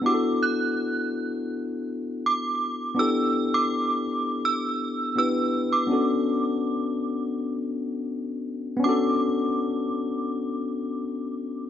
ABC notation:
X:1
M:4/4
L:1/16
Q:1/4=82
K:Bm
V:1 name="Synth bell"
d'2 f'4 z6 d'4 | e'3 d'4- d' e'4 e'3 d'- | d'6- d' z8 z | d'16 |]
V:2 name="Tine electric piano"
[B,DEFGA]16 | [B,DEGA]12 [B,DEGB]4 | [B,CDFA]16 | [B,CDFA]16 |]